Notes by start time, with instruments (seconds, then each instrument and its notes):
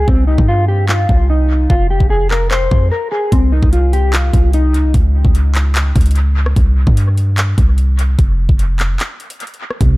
0.08 808-style bass C2, clean electric guitar C4, kick
0.27 clean electric guitar D#4
0.38 808-style bass G2, kick
0.48 clean electric guitar F4
0.68 clean electric guitar G4
0.89 clean electric guitar F4, clap
1.09 808-style bass C2, kick
1.30 clean electric guitar D#4
1.70 808-style bass F1, clean electric guitar F4, kick
1.90 clean electric guitar G4
2.00 808-style bass F1, kick
2.10 clean electric guitar G#4
2.31 clean electric guitar A#4, clap
2.51 clean electric guitar C5, clap
2.71 808-style bass F2, kick
2.91 clean electric guitar A#4
3.12 clean electric guitar G#4
3.32 808-style bass C2, clean electric guitar C4, kick, closed hi-hat
3.52 clean electric guitar D#4
3.63 808-style bass C2, kick
3.73 clean electric guitar F4, closed hi-hat
3.93 clean electric guitar G4, closed hi-hat
4.13 clean electric guitar F4, clap, closed hi-hat
4.33 808-style bass C2, kick, closed hi-hat
4.53 clean electric guitar D#4, closed hi-hat
4.74 808-style bass C#2, closed hi-hat
4.84 808-style bass C2
4.94 808-style bass C#2, kick, closed hi-hat
5.25 808-style bass C#2, kick
5.35 closed hi-hat
5.55 clap, closed hi-hat
5.75 clap, closed hi-hat
5.96 808-style bass C#2, kick, closed hi-hat
6.01 closed hi-hat
6.06 closed hi-hat
6.11 closed hi-hat
6.16 closed hi-hat
6.46 cross-stick
6.56 808-style bass C2, kick, closed hi-hat
6.87 808-style bass G2, kick
6.97 closed hi-hat
7.17 closed hi-hat
7.38 clap, closed hi-hat
7.58 808-style bass C2, kick, closed hi-hat
7.78 closed hi-hat
7.99 closed hi-hat
8.19 808-style bass F1, kick, closed hi-hat
8.49 808-style bass F1, kick
8.59 closed hi-hat
8.79 clap, closed hi-hat
9.00 clap, closed hi-hat
9.20 closed hi-hat
9.30 closed hi-hat
9.40 closed hi-hat
9.47 closed hi-hat
9.54 closed hi-hat
9.71 cross-stick
9.81 808-style bass C2, synth keys C3, kick, closed hi-hat